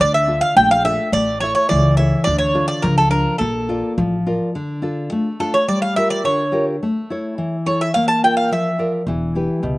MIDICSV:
0, 0, Header, 1, 4, 480
1, 0, Start_track
1, 0, Time_signature, 2, 2, 24, 8
1, 0, Tempo, 566038
1, 8295, End_track
2, 0, Start_track
2, 0, Title_t, "Bouzouki"
2, 0, Program_c, 0, 25
2, 6, Note_on_c, 0, 74, 94
2, 118, Note_off_c, 0, 74, 0
2, 121, Note_on_c, 0, 76, 91
2, 345, Note_off_c, 0, 76, 0
2, 348, Note_on_c, 0, 77, 91
2, 466, Note_off_c, 0, 77, 0
2, 480, Note_on_c, 0, 79, 93
2, 593, Note_off_c, 0, 79, 0
2, 603, Note_on_c, 0, 77, 96
2, 715, Note_off_c, 0, 77, 0
2, 719, Note_on_c, 0, 76, 96
2, 946, Note_off_c, 0, 76, 0
2, 959, Note_on_c, 0, 74, 100
2, 1186, Note_off_c, 0, 74, 0
2, 1191, Note_on_c, 0, 73, 85
2, 1303, Note_off_c, 0, 73, 0
2, 1313, Note_on_c, 0, 73, 85
2, 1429, Note_off_c, 0, 73, 0
2, 1433, Note_on_c, 0, 74, 90
2, 1664, Note_off_c, 0, 74, 0
2, 1671, Note_on_c, 0, 76, 87
2, 1897, Note_off_c, 0, 76, 0
2, 1900, Note_on_c, 0, 74, 97
2, 2019, Note_off_c, 0, 74, 0
2, 2022, Note_on_c, 0, 73, 84
2, 2260, Note_off_c, 0, 73, 0
2, 2271, Note_on_c, 0, 74, 87
2, 2395, Note_on_c, 0, 70, 80
2, 2405, Note_off_c, 0, 74, 0
2, 2515, Note_off_c, 0, 70, 0
2, 2524, Note_on_c, 0, 69, 83
2, 2631, Note_off_c, 0, 69, 0
2, 2634, Note_on_c, 0, 70, 83
2, 2866, Note_off_c, 0, 70, 0
2, 2869, Note_on_c, 0, 69, 74
2, 3328, Note_off_c, 0, 69, 0
2, 4580, Note_on_c, 0, 69, 75
2, 4689, Note_off_c, 0, 69, 0
2, 4697, Note_on_c, 0, 73, 82
2, 4808, Note_off_c, 0, 73, 0
2, 4821, Note_on_c, 0, 74, 90
2, 4930, Note_off_c, 0, 74, 0
2, 4935, Note_on_c, 0, 77, 86
2, 5046, Note_off_c, 0, 77, 0
2, 5057, Note_on_c, 0, 76, 86
2, 5167, Note_off_c, 0, 76, 0
2, 5176, Note_on_c, 0, 74, 90
2, 5287, Note_off_c, 0, 74, 0
2, 5300, Note_on_c, 0, 73, 74
2, 5631, Note_off_c, 0, 73, 0
2, 6499, Note_on_c, 0, 73, 71
2, 6606, Note_off_c, 0, 73, 0
2, 6625, Note_on_c, 0, 76, 80
2, 6731, Note_off_c, 0, 76, 0
2, 6734, Note_on_c, 0, 77, 92
2, 6847, Note_off_c, 0, 77, 0
2, 6851, Note_on_c, 0, 81, 90
2, 6961, Note_off_c, 0, 81, 0
2, 6988, Note_on_c, 0, 79, 83
2, 7090, Note_off_c, 0, 79, 0
2, 7096, Note_on_c, 0, 77, 83
2, 7203, Note_off_c, 0, 77, 0
2, 7230, Note_on_c, 0, 76, 68
2, 7552, Note_off_c, 0, 76, 0
2, 8295, End_track
3, 0, Start_track
3, 0, Title_t, "Nylon-string guitar"
3, 0, Program_c, 1, 24
3, 0, Note_on_c, 1, 50, 70
3, 232, Note_on_c, 1, 62, 49
3, 235, Note_on_c, 1, 65, 46
3, 239, Note_on_c, 1, 69, 55
3, 468, Note_off_c, 1, 50, 0
3, 480, Note_on_c, 1, 57, 71
3, 622, Note_off_c, 1, 62, 0
3, 624, Note_off_c, 1, 65, 0
3, 626, Note_off_c, 1, 69, 0
3, 714, Note_on_c, 1, 62, 48
3, 720, Note_on_c, 1, 65, 43
3, 722, Note_on_c, 1, 69, 55
3, 912, Note_off_c, 1, 62, 0
3, 913, Note_off_c, 1, 65, 0
3, 916, Note_off_c, 1, 69, 0
3, 942, Note_off_c, 1, 57, 0
3, 953, Note_on_c, 1, 57, 72
3, 1202, Note_on_c, 1, 64, 49
3, 1207, Note_on_c, 1, 69, 45
3, 1214, Note_on_c, 1, 76, 54
3, 1427, Note_off_c, 1, 57, 0
3, 1442, Note_on_c, 1, 52, 71
3, 1590, Note_off_c, 1, 64, 0
3, 1593, Note_off_c, 1, 69, 0
3, 1597, Note_off_c, 1, 76, 0
3, 1680, Note_on_c, 1, 64, 49
3, 1684, Note_on_c, 1, 69, 48
3, 1688, Note_on_c, 1, 73, 55
3, 1877, Note_off_c, 1, 64, 0
3, 1880, Note_off_c, 1, 69, 0
3, 1881, Note_off_c, 1, 73, 0
3, 1912, Note_off_c, 1, 52, 0
3, 1920, Note_on_c, 1, 50, 76
3, 2153, Note_on_c, 1, 62, 51
3, 2158, Note_on_c, 1, 65, 47
3, 2161, Note_on_c, 1, 69, 55
3, 2392, Note_off_c, 1, 50, 0
3, 2401, Note_on_c, 1, 53, 69
3, 2546, Note_off_c, 1, 62, 0
3, 2548, Note_off_c, 1, 65, 0
3, 2548, Note_off_c, 1, 69, 0
3, 2631, Note_on_c, 1, 62, 53
3, 2637, Note_on_c, 1, 65, 46
3, 2832, Note_off_c, 1, 62, 0
3, 2836, Note_off_c, 1, 65, 0
3, 2874, Note_off_c, 1, 53, 0
3, 2877, Note_on_c, 1, 58, 66
3, 3127, Note_on_c, 1, 65, 50
3, 3134, Note_on_c, 1, 74, 54
3, 3351, Note_off_c, 1, 58, 0
3, 3372, Note_on_c, 1, 53, 68
3, 3515, Note_off_c, 1, 65, 0
3, 3519, Note_off_c, 1, 74, 0
3, 3616, Note_on_c, 1, 65, 50
3, 3620, Note_on_c, 1, 70, 42
3, 3620, Note_on_c, 1, 74, 53
3, 3808, Note_off_c, 1, 65, 0
3, 3808, Note_off_c, 1, 74, 0
3, 3810, Note_off_c, 1, 70, 0
3, 3839, Note_off_c, 1, 53, 0
3, 3859, Note_on_c, 1, 50, 66
3, 4086, Note_on_c, 1, 62, 51
3, 4090, Note_on_c, 1, 65, 43
3, 4096, Note_on_c, 1, 69, 53
3, 4323, Note_off_c, 1, 50, 0
3, 4343, Note_on_c, 1, 57, 66
3, 4474, Note_off_c, 1, 62, 0
3, 4475, Note_off_c, 1, 65, 0
3, 4480, Note_off_c, 1, 69, 0
3, 4576, Note_on_c, 1, 62, 43
3, 4577, Note_on_c, 1, 65, 45
3, 4585, Note_on_c, 1, 69, 55
3, 4767, Note_off_c, 1, 65, 0
3, 4768, Note_off_c, 1, 62, 0
3, 4773, Note_off_c, 1, 69, 0
3, 4805, Note_off_c, 1, 57, 0
3, 4817, Note_on_c, 1, 55, 67
3, 5060, Note_on_c, 1, 65, 52
3, 5063, Note_on_c, 1, 67, 45
3, 5068, Note_on_c, 1, 70, 54
3, 5281, Note_off_c, 1, 55, 0
3, 5292, Note_on_c, 1, 50, 68
3, 5441, Note_off_c, 1, 65, 0
3, 5444, Note_off_c, 1, 67, 0
3, 5446, Note_off_c, 1, 70, 0
3, 5527, Note_on_c, 1, 65, 48
3, 5531, Note_on_c, 1, 67, 43
3, 5536, Note_on_c, 1, 70, 54
3, 5722, Note_off_c, 1, 65, 0
3, 5723, Note_off_c, 1, 67, 0
3, 5727, Note_off_c, 1, 70, 0
3, 5758, Note_off_c, 1, 50, 0
3, 5788, Note_on_c, 1, 57, 65
3, 6023, Note_on_c, 1, 64, 49
3, 6029, Note_on_c, 1, 69, 45
3, 6033, Note_on_c, 1, 73, 55
3, 6245, Note_off_c, 1, 57, 0
3, 6258, Note_on_c, 1, 52, 68
3, 6401, Note_off_c, 1, 64, 0
3, 6406, Note_off_c, 1, 69, 0
3, 6406, Note_off_c, 1, 73, 0
3, 6497, Note_on_c, 1, 64, 47
3, 6503, Note_on_c, 1, 69, 44
3, 6507, Note_on_c, 1, 73, 50
3, 6686, Note_off_c, 1, 64, 0
3, 6690, Note_off_c, 1, 69, 0
3, 6691, Note_off_c, 1, 73, 0
3, 6719, Note_off_c, 1, 52, 0
3, 6748, Note_on_c, 1, 58, 65
3, 6984, Note_on_c, 1, 65, 45
3, 6987, Note_on_c, 1, 70, 44
3, 6989, Note_on_c, 1, 74, 52
3, 7202, Note_off_c, 1, 58, 0
3, 7219, Note_on_c, 1, 53, 66
3, 7360, Note_off_c, 1, 65, 0
3, 7361, Note_off_c, 1, 70, 0
3, 7362, Note_off_c, 1, 74, 0
3, 7451, Note_on_c, 1, 65, 42
3, 7456, Note_on_c, 1, 70, 43
3, 7458, Note_on_c, 1, 74, 48
3, 7640, Note_off_c, 1, 65, 0
3, 7643, Note_off_c, 1, 70, 0
3, 7643, Note_off_c, 1, 74, 0
3, 7677, Note_off_c, 1, 53, 0
3, 7699, Note_on_c, 1, 52, 66
3, 7931, Note_on_c, 1, 64, 46
3, 7935, Note_on_c, 1, 67, 45
3, 7939, Note_on_c, 1, 71, 54
3, 8155, Note_off_c, 1, 52, 0
3, 8163, Note_on_c, 1, 47, 65
3, 8295, Note_off_c, 1, 47, 0
3, 8295, Note_off_c, 1, 64, 0
3, 8295, Note_off_c, 1, 67, 0
3, 8295, Note_off_c, 1, 71, 0
3, 8295, End_track
4, 0, Start_track
4, 0, Title_t, "Upright bass"
4, 0, Program_c, 2, 32
4, 1, Note_on_c, 2, 38, 97
4, 338, Note_off_c, 2, 38, 0
4, 478, Note_on_c, 2, 34, 102
4, 818, Note_off_c, 2, 34, 0
4, 954, Note_on_c, 2, 33, 91
4, 1296, Note_off_c, 2, 33, 0
4, 1453, Note_on_c, 2, 37, 104
4, 1789, Note_off_c, 2, 37, 0
4, 1927, Note_on_c, 2, 38, 94
4, 2266, Note_off_c, 2, 38, 0
4, 2407, Note_on_c, 2, 37, 98
4, 2746, Note_off_c, 2, 37, 0
4, 2893, Note_on_c, 2, 34, 97
4, 3230, Note_off_c, 2, 34, 0
4, 3372, Note_on_c, 2, 33, 100
4, 3710, Note_off_c, 2, 33, 0
4, 7688, Note_on_c, 2, 28, 98
4, 8021, Note_off_c, 2, 28, 0
4, 8168, Note_on_c, 2, 37, 82
4, 8295, Note_off_c, 2, 37, 0
4, 8295, End_track
0, 0, End_of_file